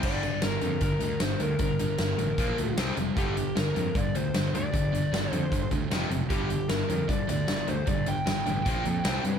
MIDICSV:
0, 0, Header, 1, 5, 480
1, 0, Start_track
1, 0, Key_signature, -2, "minor"
1, 0, Tempo, 391645
1, 47, Time_signature, 4, 2, 24, 8
1, 11507, End_track
2, 0, Start_track
2, 0, Title_t, "Lead electric guitar"
2, 0, Program_c, 0, 29
2, 60, Note_on_c, 0, 74, 102
2, 537, Note_off_c, 0, 74, 0
2, 542, Note_on_c, 0, 70, 91
2, 980, Note_off_c, 0, 70, 0
2, 1018, Note_on_c, 0, 70, 87
2, 1489, Note_off_c, 0, 70, 0
2, 1494, Note_on_c, 0, 72, 81
2, 1730, Note_off_c, 0, 72, 0
2, 1730, Note_on_c, 0, 70, 81
2, 1964, Note_off_c, 0, 70, 0
2, 1979, Note_on_c, 0, 70, 72
2, 3362, Note_off_c, 0, 70, 0
2, 3904, Note_on_c, 0, 67, 90
2, 4341, Note_off_c, 0, 67, 0
2, 4398, Note_on_c, 0, 70, 90
2, 4857, Note_on_c, 0, 74, 104
2, 4875, Note_off_c, 0, 70, 0
2, 5094, Note_off_c, 0, 74, 0
2, 5094, Note_on_c, 0, 72, 97
2, 5569, Note_off_c, 0, 72, 0
2, 5583, Note_on_c, 0, 74, 98
2, 6539, Note_off_c, 0, 74, 0
2, 6539, Note_on_c, 0, 72, 98
2, 6966, Note_off_c, 0, 72, 0
2, 7721, Note_on_c, 0, 67, 86
2, 8196, Note_off_c, 0, 67, 0
2, 8201, Note_on_c, 0, 70, 89
2, 8650, Note_off_c, 0, 70, 0
2, 8684, Note_on_c, 0, 74, 90
2, 8909, Note_off_c, 0, 74, 0
2, 8941, Note_on_c, 0, 74, 85
2, 9381, Note_off_c, 0, 74, 0
2, 9424, Note_on_c, 0, 72, 88
2, 9640, Note_off_c, 0, 72, 0
2, 9666, Note_on_c, 0, 74, 95
2, 9904, Note_off_c, 0, 74, 0
2, 9904, Note_on_c, 0, 79, 93
2, 11285, Note_off_c, 0, 79, 0
2, 11507, End_track
3, 0, Start_track
3, 0, Title_t, "Distorted electric guitar"
3, 0, Program_c, 1, 30
3, 48, Note_on_c, 1, 43, 81
3, 52, Note_on_c, 1, 50, 74
3, 56, Note_on_c, 1, 55, 83
3, 265, Note_off_c, 1, 43, 0
3, 274, Note_off_c, 1, 50, 0
3, 276, Note_off_c, 1, 55, 0
3, 280, Note_on_c, 1, 43, 64
3, 288, Note_on_c, 1, 50, 76
3, 498, Note_off_c, 1, 43, 0
3, 502, Note_off_c, 1, 50, 0
3, 521, Note_on_c, 1, 43, 76
3, 525, Note_on_c, 1, 50, 88
3, 739, Note_off_c, 1, 43, 0
3, 741, Note_off_c, 1, 50, 0
3, 755, Note_on_c, 1, 50, 71
3, 756, Note_on_c, 1, 43, 60
3, 973, Note_off_c, 1, 43, 0
3, 976, Note_off_c, 1, 50, 0
3, 987, Note_on_c, 1, 43, 69
3, 997, Note_on_c, 1, 50, 76
3, 1203, Note_off_c, 1, 43, 0
3, 1209, Note_off_c, 1, 50, 0
3, 1218, Note_on_c, 1, 43, 64
3, 1224, Note_on_c, 1, 50, 70
3, 1447, Note_off_c, 1, 43, 0
3, 1450, Note_off_c, 1, 50, 0
3, 1466, Note_on_c, 1, 43, 65
3, 1475, Note_on_c, 1, 50, 78
3, 1691, Note_off_c, 1, 43, 0
3, 1695, Note_off_c, 1, 50, 0
3, 1713, Note_on_c, 1, 43, 65
3, 1716, Note_on_c, 1, 50, 76
3, 1934, Note_off_c, 1, 43, 0
3, 1936, Note_off_c, 1, 50, 0
3, 1948, Note_on_c, 1, 43, 66
3, 1949, Note_on_c, 1, 50, 66
3, 2171, Note_off_c, 1, 43, 0
3, 2172, Note_off_c, 1, 50, 0
3, 2201, Note_on_c, 1, 43, 65
3, 2207, Note_on_c, 1, 50, 70
3, 2410, Note_off_c, 1, 43, 0
3, 2414, Note_off_c, 1, 50, 0
3, 2425, Note_on_c, 1, 43, 82
3, 2429, Note_on_c, 1, 50, 80
3, 2650, Note_off_c, 1, 43, 0
3, 2652, Note_off_c, 1, 50, 0
3, 2675, Note_on_c, 1, 43, 63
3, 2677, Note_on_c, 1, 50, 67
3, 2895, Note_off_c, 1, 43, 0
3, 2896, Note_off_c, 1, 50, 0
3, 2919, Note_on_c, 1, 46, 96
3, 2923, Note_on_c, 1, 53, 94
3, 2925, Note_on_c, 1, 58, 107
3, 3130, Note_off_c, 1, 46, 0
3, 3143, Note_off_c, 1, 53, 0
3, 3144, Note_on_c, 1, 46, 70
3, 3150, Note_off_c, 1, 58, 0
3, 3158, Note_on_c, 1, 53, 71
3, 3370, Note_off_c, 1, 46, 0
3, 3377, Note_off_c, 1, 53, 0
3, 3399, Note_on_c, 1, 48, 81
3, 3403, Note_on_c, 1, 55, 81
3, 3407, Note_on_c, 1, 60, 93
3, 3623, Note_off_c, 1, 48, 0
3, 3629, Note_off_c, 1, 55, 0
3, 3630, Note_off_c, 1, 60, 0
3, 3638, Note_on_c, 1, 48, 66
3, 3647, Note_on_c, 1, 55, 78
3, 3857, Note_off_c, 1, 48, 0
3, 3861, Note_off_c, 1, 55, 0
3, 3884, Note_on_c, 1, 43, 82
3, 3890, Note_on_c, 1, 50, 89
3, 3892, Note_on_c, 1, 55, 75
3, 4109, Note_off_c, 1, 43, 0
3, 4112, Note_off_c, 1, 50, 0
3, 4113, Note_off_c, 1, 55, 0
3, 4125, Note_on_c, 1, 43, 66
3, 4130, Note_on_c, 1, 50, 79
3, 4340, Note_off_c, 1, 43, 0
3, 4343, Note_off_c, 1, 50, 0
3, 4357, Note_on_c, 1, 43, 77
3, 4359, Note_on_c, 1, 50, 89
3, 4576, Note_off_c, 1, 43, 0
3, 4577, Note_off_c, 1, 50, 0
3, 4607, Note_on_c, 1, 43, 65
3, 4613, Note_on_c, 1, 50, 63
3, 4821, Note_off_c, 1, 43, 0
3, 4824, Note_off_c, 1, 50, 0
3, 4850, Note_on_c, 1, 43, 75
3, 4854, Note_on_c, 1, 50, 82
3, 5063, Note_off_c, 1, 43, 0
3, 5065, Note_off_c, 1, 50, 0
3, 5094, Note_on_c, 1, 43, 77
3, 5100, Note_on_c, 1, 50, 77
3, 5305, Note_off_c, 1, 43, 0
3, 5308, Note_off_c, 1, 50, 0
3, 5334, Note_on_c, 1, 43, 68
3, 5336, Note_on_c, 1, 50, 86
3, 5545, Note_off_c, 1, 43, 0
3, 5546, Note_off_c, 1, 50, 0
3, 5562, Note_on_c, 1, 43, 58
3, 5576, Note_on_c, 1, 50, 80
3, 5779, Note_off_c, 1, 43, 0
3, 5786, Note_off_c, 1, 50, 0
3, 5802, Note_on_c, 1, 43, 59
3, 5802, Note_on_c, 1, 50, 79
3, 6019, Note_off_c, 1, 43, 0
3, 6019, Note_off_c, 1, 50, 0
3, 6040, Note_on_c, 1, 43, 67
3, 6043, Note_on_c, 1, 50, 73
3, 6258, Note_off_c, 1, 43, 0
3, 6260, Note_off_c, 1, 50, 0
3, 6285, Note_on_c, 1, 43, 74
3, 6293, Note_on_c, 1, 50, 85
3, 6501, Note_off_c, 1, 43, 0
3, 6505, Note_off_c, 1, 50, 0
3, 6529, Note_on_c, 1, 43, 67
3, 6531, Note_on_c, 1, 50, 67
3, 6743, Note_off_c, 1, 43, 0
3, 6744, Note_off_c, 1, 50, 0
3, 6760, Note_on_c, 1, 43, 70
3, 6768, Note_on_c, 1, 50, 86
3, 6978, Note_off_c, 1, 43, 0
3, 6983, Note_off_c, 1, 50, 0
3, 7003, Note_on_c, 1, 43, 56
3, 7011, Note_on_c, 1, 50, 67
3, 7220, Note_off_c, 1, 43, 0
3, 7225, Note_off_c, 1, 50, 0
3, 7246, Note_on_c, 1, 41, 76
3, 7249, Note_on_c, 1, 48, 84
3, 7255, Note_on_c, 1, 53, 89
3, 7468, Note_off_c, 1, 41, 0
3, 7473, Note_off_c, 1, 48, 0
3, 7476, Note_off_c, 1, 53, 0
3, 7483, Note_on_c, 1, 41, 64
3, 7486, Note_on_c, 1, 48, 71
3, 7701, Note_off_c, 1, 41, 0
3, 7702, Note_off_c, 1, 48, 0
3, 7725, Note_on_c, 1, 43, 75
3, 7734, Note_on_c, 1, 50, 92
3, 7736, Note_on_c, 1, 55, 83
3, 7952, Note_off_c, 1, 43, 0
3, 7956, Note_off_c, 1, 50, 0
3, 7957, Note_off_c, 1, 55, 0
3, 7977, Note_on_c, 1, 43, 64
3, 7978, Note_on_c, 1, 50, 74
3, 8188, Note_off_c, 1, 43, 0
3, 8188, Note_off_c, 1, 50, 0
3, 8223, Note_on_c, 1, 43, 74
3, 8228, Note_on_c, 1, 50, 81
3, 8431, Note_off_c, 1, 43, 0
3, 8433, Note_off_c, 1, 50, 0
3, 8459, Note_on_c, 1, 50, 71
3, 8460, Note_on_c, 1, 43, 64
3, 8669, Note_off_c, 1, 50, 0
3, 8670, Note_off_c, 1, 43, 0
3, 8706, Note_on_c, 1, 43, 76
3, 8713, Note_on_c, 1, 50, 89
3, 8913, Note_off_c, 1, 43, 0
3, 8916, Note_off_c, 1, 50, 0
3, 8935, Note_on_c, 1, 43, 64
3, 8948, Note_on_c, 1, 50, 72
3, 9147, Note_off_c, 1, 43, 0
3, 9154, Note_off_c, 1, 50, 0
3, 9167, Note_on_c, 1, 43, 67
3, 9172, Note_on_c, 1, 50, 65
3, 9383, Note_off_c, 1, 43, 0
3, 9386, Note_off_c, 1, 50, 0
3, 9411, Note_on_c, 1, 43, 71
3, 9417, Note_on_c, 1, 50, 67
3, 9625, Note_off_c, 1, 43, 0
3, 9628, Note_off_c, 1, 50, 0
3, 9661, Note_on_c, 1, 43, 64
3, 9661, Note_on_c, 1, 50, 73
3, 9870, Note_off_c, 1, 43, 0
3, 9870, Note_off_c, 1, 50, 0
3, 9887, Note_on_c, 1, 50, 85
3, 9889, Note_on_c, 1, 43, 69
3, 10103, Note_off_c, 1, 50, 0
3, 10104, Note_off_c, 1, 43, 0
3, 10124, Note_on_c, 1, 43, 79
3, 10131, Note_on_c, 1, 50, 81
3, 10342, Note_off_c, 1, 43, 0
3, 10345, Note_off_c, 1, 50, 0
3, 10368, Note_on_c, 1, 43, 65
3, 10371, Note_on_c, 1, 50, 67
3, 10584, Note_off_c, 1, 43, 0
3, 10585, Note_off_c, 1, 50, 0
3, 10607, Note_on_c, 1, 46, 86
3, 10609, Note_on_c, 1, 53, 90
3, 10616, Note_on_c, 1, 58, 95
3, 10829, Note_off_c, 1, 46, 0
3, 10833, Note_off_c, 1, 53, 0
3, 10837, Note_off_c, 1, 58, 0
3, 10844, Note_on_c, 1, 46, 70
3, 10852, Note_on_c, 1, 53, 70
3, 11061, Note_off_c, 1, 46, 0
3, 11065, Note_off_c, 1, 53, 0
3, 11081, Note_on_c, 1, 48, 89
3, 11082, Note_on_c, 1, 55, 80
3, 11087, Note_on_c, 1, 60, 93
3, 11303, Note_off_c, 1, 48, 0
3, 11310, Note_off_c, 1, 55, 0
3, 11312, Note_off_c, 1, 60, 0
3, 11318, Note_on_c, 1, 48, 69
3, 11322, Note_on_c, 1, 55, 76
3, 11507, Note_off_c, 1, 48, 0
3, 11507, Note_off_c, 1, 55, 0
3, 11507, End_track
4, 0, Start_track
4, 0, Title_t, "Picked electric bass"
4, 0, Program_c, 2, 34
4, 46, Note_on_c, 2, 31, 77
4, 355, Note_off_c, 2, 31, 0
4, 527, Note_on_c, 2, 31, 85
4, 681, Note_off_c, 2, 31, 0
4, 770, Note_on_c, 2, 41, 88
4, 923, Note_off_c, 2, 41, 0
4, 996, Note_on_c, 2, 31, 87
4, 1153, Note_off_c, 2, 31, 0
4, 1241, Note_on_c, 2, 38, 90
4, 1397, Note_off_c, 2, 38, 0
4, 1482, Note_on_c, 2, 31, 87
4, 1638, Note_off_c, 2, 31, 0
4, 1725, Note_on_c, 2, 38, 81
4, 1879, Note_off_c, 2, 38, 0
4, 1958, Note_on_c, 2, 31, 89
4, 2269, Note_off_c, 2, 31, 0
4, 2445, Note_on_c, 2, 31, 87
4, 2599, Note_off_c, 2, 31, 0
4, 2680, Note_on_c, 2, 33, 90
4, 2836, Note_off_c, 2, 33, 0
4, 2920, Note_on_c, 2, 34, 82
4, 3076, Note_off_c, 2, 34, 0
4, 3169, Note_on_c, 2, 38, 89
4, 3322, Note_off_c, 2, 38, 0
4, 3408, Note_on_c, 2, 36, 85
4, 3561, Note_off_c, 2, 36, 0
4, 3647, Note_on_c, 2, 29, 77
4, 3800, Note_off_c, 2, 29, 0
4, 3886, Note_on_c, 2, 31, 91
4, 4195, Note_off_c, 2, 31, 0
4, 4373, Note_on_c, 2, 31, 89
4, 4525, Note_off_c, 2, 31, 0
4, 4610, Note_on_c, 2, 41, 96
4, 4763, Note_off_c, 2, 41, 0
4, 4847, Note_on_c, 2, 31, 85
4, 5000, Note_off_c, 2, 31, 0
4, 5099, Note_on_c, 2, 38, 88
4, 5249, Note_off_c, 2, 38, 0
4, 5326, Note_on_c, 2, 31, 90
4, 5480, Note_off_c, 2, 31, 0
4, 5563, Note_on_c, 2, 38, 85
4, 5718, Note_off_c, 2, 38, 0
4, 5810, Note_on_c, 2, 31, 85
4, 6118, Note_off_c, 2, 31, 0
4, 6289, Note_on_c, 2, 31, 82
4, 6442, Note_off_c, 2, 31, 0
4, 6523, Note_on_c, 2, 41, 86
4, 6678, Note_off_c, 2, 41, 0
4, 6769, Note_on_c, 2, 31, 88
4, 6923, Note_off_c, 2, 31, 0
4, 7005, Note_on_c, 2, 38, 89
4, 7160, Note_off_c, 2, 38, 0
4, 7237, Note_on_c, 2, 29, 84
4, 7395, Note_off_c, 2, 29, 0
4, 7482, Note_on_c, 2, 30, 77
4, 7638, Note_off_c, 2, 30, 0
4, 7727, Note_on_c, 2, 31, 83
4, 8037, Note_off_c, 2, 31, 0
4, 8203, Note_on_c, 2, 31, 83
4, 8359, Note_off_c, 2, 31, 0
4, 8453, Note_on_c, 2, 41, 93
4, 8606, Note_off_c, 2, 41, 0
4, 8693, Note_on_c, 2, 31, 89
4, 8846, Note_off_c, 2, 31, 0
4, 8932, Note_on_c, 2, 38, 94
4, 9086, Note_off_c, 2, 38, 0
4, 9182, Note_on_c, 2, 31, 86
4, 9332, Note_off_c, 2, 31, 0
4, 9421, Note_on_c, 2, 38, 73
4, 9571, Note_off_c, 2, 38, 0
4, 9653, Note_on_c, 2, 31, 81
4, 9961, Note_off_c, 2, 31, 0
4, 10138, Note_on_c, 2, 31, 77
4, 10289, Note_off_c, 2, 31, 0
4, 10377, Note_on_c, 2, 33, 95
4, 10529, Note_off_c, 2, 33, 0
4, 10616, Note_on_c, 2, 34, 94
4, 10768, Note_off_c, 2, 34, 0
4, 10855, Note_on_c, 2, 41, 89
4, 11007, Note_off_c, 2, 41, 0
4, 11096, Note_on_c, 2, 36, 87
4, 11247, Note_off_c, 2, 36, 0
4, 11338, Note_on_c, 2, 43, 83
4, 11489, Note_off_c, 2, 43, 0
4, 11507, End_track
5, 0, Start_track
5, 0, Title_t, "Drums"
5, 36, Note_on_c, 9, 49, 97
5, 42, Note_on_c, 9, 36, 100
5, 158, Note_off_c, 9, 49, 0
5, 164, Note_off_c, 9, 36, 0
5, 281, Note_on_c, 9, 42, 64
5, 403, Note_off_c, 9, 42, 0
5, 510, Note_on_c, 9, 42, 85
5, 515, Note_on_c, 9, 38, 103
5, 632, Note_off_c, 9, 42, 0
5, 637, Note_off_c, 9, 38, 0
5, 750, Note_on_c, 9, 42, 68
5, 873, Note_off_c, 9, 42, 0
5, 988, Note_on_c, 9, 42, 86
5, 997, Note_on_c, 9, 36, 100
5, 1110, Note_off_c, 9, 42, 0
5, 1119, Note_off_c, 9, 36, 0
5, 1230, Note_on_c, 9, 42, 70
5, 1352, Note_off_c, 9, 42, 0
5, 1468, Note_on_c, 9, 42, 97
5, 1473, Note_on_c, 9, 38, 107
5, 1591, Note_off_c, 9, 42, 0
5, 1596, Note_off_c, 9, 38, 0
5, 1711, Note_on_c, 9, 42, 69
5, 1833, Note_off_c, 9, 42, 0
5, 1944, Note_on_c, 9, 42, 85
5, 1955, Note_on_c, 9, 36, 96
5, 2067, Note_off_c, 9, 42, 0
5, 2078, Note_off_c, 9, 36, 0
5, 2197, Note_on_c, 9, 42, 68
5, 2320, Note_off_c, 9, 42, 0
5, 2429, Note_on_c, 9, 42, 82
5, 2434, Note_on_c, 9, 38, 96
5, 2552, Note_off_c, 9, 42, 0
5, 2557, Note_off_c, 9, 38, 0
5, 2678, Note_on_c, 9, 42, 59
5, 2801, Note_off_c, 9, 42, 0
5, 2916, Note_on_c, 9, 42, 82
5, 2918, Note_on_c, 9, 36, 104
5, 3039, Note_off_c, 9, 42, 0
5, 3041, Note_off_c, 9, 36, 0
5, 3163, Note_on_c, 9, 42, 62
5, 3286, Note_off_c, 9, 42, 0
5, 3399, Note_on_c, 9, 42, 84
5, 3404, Note_on_c, 9, 38, 114
5, 3521, Note_off_c, 9, 42, 0
5, 3526, Note_off_c, 9, 38, 0
5, 3639, Note_on_c, 9, 42, 61
5, 3761, Note_off_c, 9, 42, 0
5, 3882, Note_on_c, 9, 36, 102
5, 3886, Note_on_c, 9, 42, 75
5, 4005, Note_off_c, 9, 36, 0
5, 4008, Note_off_c, 9, 42, 0
5, 4129, Note_on_c, 9, 42, 64
5, 4252, Note_off_c, 9, 42, 0
5, 4369, Note_on_c, 9, 42, 77
5, 4374, Note_on_c, 9, 38, 97
5, 4491, Note_off_c, 9, 42, 0
5, 4496, Note_off_c, 9, 38, 0
5, 4608, Note_on_c, 9, 42, 64
5, 4731, Note_off_c, 9, 42, 0
5, 4843, Note_on_c, 9, 36, 106
5, 4846, Note_on_c, 9, 42, 79
5, 4966, Note_off_c, 9, 36, 0
5, 4969, Note_off_c, 9, 42, 0
5, 5087, Note_on_c, 9, 42, 69
5, 5210, Note_off_c, 9, 42, 0
5, 5321, Note_on_c, 9, 42, 87
5, 5326, Note_on_c, 9, 38, 101
5, 5444, Note_off_c, 9, 42, 0
5, 5449, Note_off_c, 9, 38, 0
5, 5573, Note_on_c, 9, 42, 68
5, 5695, Note_off_c, 9, 42, 0
5, 5805, Note_on_c, 9, 36, 110
5, 5808, Note_on_c, 9, 42, 86
5, 5927, Note_off_c, 9, 36, 0
5, 5931, Note_off_c, 9, 42, 0
5, 6061, Note_on_c, 9, 42, 63
5, 6183, Note_off_c, 9, 42, 0
5, 6293, Note_on_c, 9, 42, 84
5, 6298, Note_on_c, 9, 38, 97
5, 6416, Note_off_c, 9, 42, 0
5, 6421, Note_off_c, 9, 38, 0
5, 6527, Note_on_c, 9, 42, 67
5, 6650, Note_off_c, 9, 42, 0
5, 6763, Note_on_c, 9, 36, 101
5, 6768, Note_on_c, 9, 42, 85
5, 6886, Note_off_c, 9, 36, 0
5, 6891, Note_off_c, 9, 42, 0
5, 7000, Note_on_c, 9, 42, 61
5, 7001, Note_on_c, 9, 36, 76
5, 7123, Note_off_c, 9, 42, 0
5, 7124, Note_off_c, 9, 36, 0
5, 7245, Note_on_c, 9, 42, 83
5, 7250, Note_on_c, 9, 38, 109
5, 7368, Note_off_c, 9, 42, 0
5, 7373, Note_off_c, 9, 38, 0
5, 7490, Note_on_c, 9, 42, 59
5, 7613, Note_off_c, 9, 42, 0
5, 7721, Note_on_c, 9, 42, 81
5, 7724, Note_on_c, 9, 36, 107
5, 7844, Note_off_c, 9, 42, 0
5, 7846, Note_off_c, 9, 36, 0
5, 7966, Note_on_c, 9, 42, 64
5, 8089, Note_off_c, 9, 42, 0
5, 8201, Note_on_c, 9, 42, 75
5, 8206, Note_on_c, 9, 38, 96
5, 8324, Note_off_c, 9, 42, 0
5, 8328, Note_off_c, 9, 38, 0
5, 8451, Note_on_c, 9, 42, 64
5, 8573, Note_off_c, 9, 42, 0
5, 8689, Note_on_c, 9, 36, 99
5, 8692, Note_on_c, 9, 42, 80
5, 8811, Note_off_c, 9, 36, 0
5, 8814, Note_off_c, 9, 42, 0
5, 8932, Note_on_c, 9, 42, 69
5, 9054, Note_off_c, 9, 42, 0
5, 9165, Note_on_c, 9, 42, 88
5, 9170, Note_on_c, 9, 38, 100
5, 9287, Note_off_c, 9, 42, 0
5, 9292, Note_off_c, 9, 38, 0
5, 9408, Note_on_c, 9, 42, 65
5, 9530, Note_off_c, 9, 42, 0
5, 9641, Note_on_c, 9, 42, 78
5, 9652, Note_on_c, 9, 36, 98
5, 9764, Note_off_c, 9, 42, 0
5, 9774, Note_off_c, 9, 36, 0
5, 9881, Note_on_c, 9, 42, 66
5, 10004, Note_off_c, 9, 42, 0
5, 10131, Note_on_c, 9, 42, 83
5, 10136, Note_on_c, 9, 38, 103
5, 10253, Note_off_c, 9, 42, 0
5, 10258, Note_off_c, 9, 38, 0
5, 10371, Note_on_c, 9, 42, 70
5, 10494, Note_off_c, 9, 42, 0
5, 10613, Note_on_c, 9, 36, 111
5, 10613, Note_on_c, 9, 42, 83
5, 10736, Note_off_c, 9, 36, 0
5, 10736, Note_off_c, 9, 42, 0
5, 10849, Note_on_c, 9, 42, 63
5, 10972, Note_off_c, 9, 42, 0
5, 11086, Note_on_c, 9, 42, 84
5, 11091, Note_on_c, 9, 38, 119
5, 11209, Note_off_c, 9, 42, 0
5, 11214, Note_off_c, 9, 38, 0
5, 11331, Note_on_c, 9, 42, 65
5, 11453, Note_off_c, 9, 42, 0
5, 11507, End_track
0, 0, End_of_file